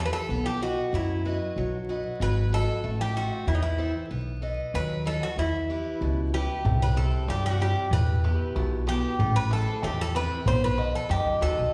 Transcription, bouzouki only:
0.05 0.12 B4 medium
0.13 0.47 A4 medium
0.46 0.60 G4 medium
0.62 0.92 F#4 medium
0.95 1.39 E4 medium
2.22 2.51 B4 medium
2.54 2.98 A4 medium
3.01 3.16 G4 medium
3.17 3.46 F#4 medium
3.48 3.54 E4 medium
3.55 3.62 D#4 medium
3.62 3.93 E4 medium
4.75 5.04 B4 medium
5.07 5.23 A4 medium
5.23 5.38 F#4 medium
5.39 6.30 E4 medium
6.34 6.83 G4 medium
6.82 6.97 B4 medium
6.97 7.27 A4 medium
7.30 7.45 G4 medium
7.46 7.61 F#4 medium
7.62 7.91 G4 medium
7.93 8.90 B4 medium
8.89 9.37 G4 medium
9.36 9.52 B4 loud
9.53 9.84 A4 loud
9.84 10.00 G4 medium
10.01 10.15 A4 loud
10.16 10.45 B4 loud
10.48 10.61 C5 loud
10.64 10.95 B4 medium
10.95 11.09 A4 medium
11.11 11.39 G4 medium
11.42 11.74 A4 medium

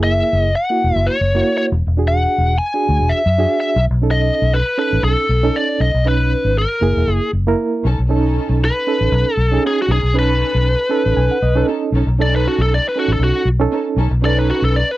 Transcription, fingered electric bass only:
0.00 0.21 F#1 medium
0.33 0.53 F#1 medium
0.84 0.93 E1 medium
0.96 1.06 F#1 medium
1.21 1.41 F#1 medium
1.72 1.83 E1 medium
1.87 2.25 E1 medium
2.38 2.57 E1 medium
2.89 2.97 D2 medium
3.00 3.11 E1 medium
3.26 3.45 F#2 loud
3.76 3.87 B1 loud
3.91 4.29 B1 medium
4.42 4.61 B1 medium
4.93 5.01 A1 medium
5.03 5.14 B1 medium
5.29 5.49 B1 loud
5.80 5.91 B1 medium
5.94 6.33 B1 medium
6.45 6.64 G#1 medium
6.82 6.93 F#1 medium
6.97 7.05 E1 medium
7.07 7.18 F#1 medium
7.33 7.53 F#1 medium
7.85 7.96 B1 loud
7.99 8.38 B1 medium
8.49 8.69 B1 medium
9.01 9.10 A1 medium
9.12 9.23 B1 medium
9.37 9.57 B1 loud
9.88 10.00 B1 medium
10.03 10.42 B1 medium
10.55 10.74 B1 medium
11.06 11.14 A1 medium
11.17 11.28 B1 medium
11.42 11.62 B1 loud
11.92 12.04 B1 loud
12.07 12.46 B1 medium
12.58 12.78 B1 medium
13.08 13.17 A1 medium
13.19 13.31 B1 medium
13.45 13.65 B1 loud
13.97 14.08 B1 loud
14.11 14.50 B1 medium
14.62 14.82 B1 medium

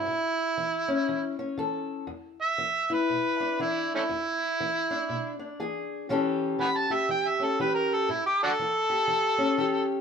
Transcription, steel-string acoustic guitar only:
0.00 2.37 E4 medium
0.07 0.53 A2 medium
0.58 1.03 E3 medium
0.88 1.38 C#4 medium
1.09 1.54 E3 medium
1.39 2.06 C#4 medium
1.58 2.04 E3 medium
1.58 2.06 A4 medium
2.07 2.53 E2 medium
2.58 3.04 E3 medium
2.90 4.94 E4 medium
3.10 3.55 B2 medium
3.40 3.59 D4 medium
3.60 4.05 E3 medium
3.60 4.07 D4 medium
4.09 4.55 E2 medium
4.60 5.05 E3 medium
4.91 5.38 D4 medium
5.09 5.55 B2 medium
5.39 6.07 D4 soft
5.60 6.05 E3 medium
5.60 6.07 G#4 medium
6.09 6.55 A2 medium
6.09 6.59 E3 medium
6.09 7.38 C#4 medium
6.09 6.90 G4 medium
6.09 8.08 A4 medium
6.59 7.05 E3 medium
6.90 7.59 G4 soft
7.09 7.55 E3 medium
7.40 8.07 C#4 soft
7.60 8.05 E3 medium
7.60 8.07 G4 medium
8.09 8.55 A2 medium
8.59 9.05 E3 medium
8.90 9.58 G4 medium
9.08 9.54 E3 medium
9.38 10.01 C#4 medium
9.58 10.01 E3 medium
9.58 10.01 G4 medium

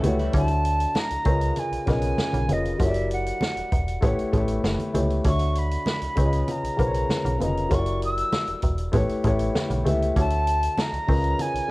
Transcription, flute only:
0.38 1.00 A5 loud
0.99 1.61 A#5 loud
1.59 1.89 G#5 medium
1.91 2.54 G#5 loud
2.52 2.83 D#5 medium
2.82 3.11 E5 medium
3.13 4.30 F#5 medium
5.28 5.60 C#6 medium
5.58 6.52 B5 medium
6.51 7.41 A#5 medium
7.43 7.75 A#5 medium
7.74 8.03 C#6 medium
8.05 8.60 E6 loud
10.19 10.82 A5 loud
10.80 11.43 A#5 loud
11.41 11.71 G#5 loud

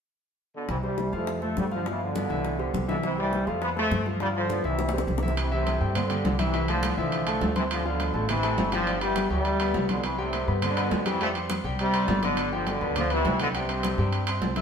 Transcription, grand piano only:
0.83 1.07 G3 medium
0.83 1.08 G4 medium
0.83 1.08 C5 medium
1.12 1.36 F3 medium
1.12 1.37 F4 medium
1.12 1.37 F5 medium
1.42 1.66 A3 medium
1.42 1.66 A4 medium
1.42 1.66 C5 medium
1.71 1.83 F3 medium
1.71 1.84 F4 medium
1.71 1.84 F5 medium
1.86 2.10 F3 medium
1.86 2.10 F4 medium
1.86 2.10 F5 medium
2.15 2.27 B3 medium
2.15 2.27 B4 medium
2.15 2.28 D5 medium
2.30 2.54 E3 medium
2.30 2.54 E4 medium
2.30 2.54 E5 medium
2.59 2.83 G3 medium
2.59 2.83 G4 medium
2.59 2.83 C5 medium
2.88 3.12 E3 medium
2.88 3.13 E4 medium
2.88 3.13 E5 medium
3.18 3.42 G3 medium
3.18 3.42 G4 medium
3.18 3.42 C5 medium
3.47 3.71 F3 medium
3.47 3.71 F4 medium
3.47 3.71 F5 medium
3.76 4.00 A3 medium
3.76 4.00 A4 medium
3.76 4.00 C5 medium
4.06 4.17 F3 medium
4.06 4.18 F4 medium
4.06 4.18 F5 medium
4.20 4.44 F3 medium
4.20 4.44 F4 medium
4.20 4.45 F5 medium
4.49 4.61 B3 medium
4.49 4.62 B4 medium
4.49 4.62 D5 medium
4.64 4.88 E3 medium
4.64 4.88 E4 medium
4.64 4.89 E5 medium
4.93 5.17 G3 medium
4.93 5.17 G4 medium
4.93 5.17 C5 medium
5.22 5.34 E3 medium
5.22 5.34 E4 medium
5.22 5.35 E5 medium
5.51 5.75 E3 medium
5.51 5.75 E4 medium
5.51 5.76 E5 medium
5.81 5.93 G3 medium
5.81 5.93 G4 medium
5.81 5.93 G5 medium
5.95 6.07 C4 medium
5.95 6.07 C5 medium
5.95 6.08 C6 medium
6.10 6.34 G3 medium
6.10 6.34 G4 medium
6.10 6.34 G5 medium
6.39 6.51 E3 medium
6.39 6.51 E4 medium
6.39 6.51 E5 medium
6.54 6.66 E3 medium
6.54 6.66 E4 medium
6.54 6.66 E5 medium
6.68 6.92 A3 medium
6.68 6.92 A4 medium
6.68 6.93 A5 medium
6.97 7.21 E3 medium
6.97 7.21 E4 medium
6.97 7.22 E5 medium
7.26 7.50 A3 medium
7.26 7.51 A4 medium
7.26 7.51 A5 medium
7.56 7.80 C4 medium
7.56 7.80 C5 medium
7.56 7.80 C6 medium
7.85 8.09 F3 medium
7.85 8.09 F4 medium
7.85 8.09 F5 medium
8.14 8.26 A3 medium
8.14 8.26 A4 medium
8.14 8.26 A5 medium
8.29 8.41 C4 medium
8.29 8.41 C5 medium
8.29 8.41 C6 medium
8.43 8.67 A3 medium
8.43 8.67 A4 medium
8.43 8.67 A5 medium
8.72 8.84 G3 medium
8.72 8.84 G4 medium
8.72 8.85 G5 medium
8.87 8.99 G3 medium
8.87 8.99 G4 medium
8.87 8.99 G5 medium
9.02 9.26 B3 medium
9.02 9.26 B4 medium
9.02 9.26 B5 medium
9.30 9.54 G3 medium
9.30 9.55 G4 medium
9.30 9.55 G5 medium
9.60 9.84 B3 medium
9.60 9.84 B4 medium
9.60 9.84 B5 medium
9.89 10.13 C4 medium
9.89 10.13 C5 medium
9.89 10.14 C6 medium
10.18 10.42 G3 medium
10.18 10.42 G4 medium
10.18 10.42 G5 medium
10.48 10.60 B3 medium
10.48 10.60 B4 medium
10.48 10.60 B5 medium
10.62 10.74 C4 medium
10.62 10.74 C5 medium
10.62 10.75 C6 medium
10.77 11.01 B3 medium
10.77 11.01 B4 medium
10.77 11.01 B5 medium
11.06 11.18 G3 medium
11.06 11.18 G4 medium
11.06 11.18 G5 medium
11.20 11.32 G3 medium
11.20 11.33 G4 medium
11.20 11.33 G5 medium
11.35 11.59 C4 medium
11.35 11.59 C5 medium
11.35 11.59 C6 medium
11.64 11.88 G3 medium
11.64 11.88 G4 medium
11.64 11.89 G5 medium
11.94 12.18 C4 medium
11.94 12.18 C5 medium
11.94 12.18 C6 medium
12.23 12.47 D4 medium
12.23 12.47 D5 medium
12.23 12.47 D6 medium
12.52 12.76 G3 medium
12.52 12.76 G4 medium
12.52 12.76 G5 medium
12.82 12.93 B3 medium
12.82 12.94 B4 medium
12.82 12.94 B5 medium
12.96 13.08 D4 medium
12.96 13.08 D5 medium
12.96 13.08 D6 medium
13.11 13.34 B3 medium
13.11 13.35 B4 medium
13.11 13.35 B5 medium
13.39 13.52 G3 medium
13.39 13.52 G4 medium
13.39 13.52 G5 medium
13.54 13.66 G3 medium
13.54 13.66 G4 medium
13.54 13.67 G5 medium
13.69 13.93 C4 medium
13.69 13.93 C5 medium
13.69 13.93 C6 medium
13.98 14.22 G3 medium
13.98 14.22 G4 medium
13.98 14.23 G5 medium
14.28 14.51 C4 medium
14.28 14.52 C5 medium
14.28 14.52 C6 medium
14.57 14.62 E4 medium
14.57 14.62 E5 medium
14.57 14.62 E6 medium

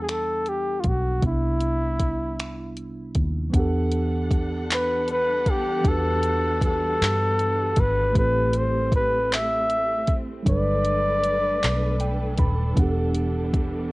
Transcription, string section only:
3.53 8.11 E3 medium
3.53 10.42 G3 medium
3.53 8.11 B3 medium
3.53 8.11 D4 medium
3.53 8.11 A4 medium
3.53 8.11 F#5 medium
8.16 10.44 A3 medium
8.16 10.44 C4 medium
10.46 12.74 A3 medium
10.46 13.92 D4 medium
10.46 13.92 A4 medium
10.46 12.75 B4 medium
12.78 13.92 E3 medium
12.78 13.92 G3 medium
12.78 13.92 B3 medium

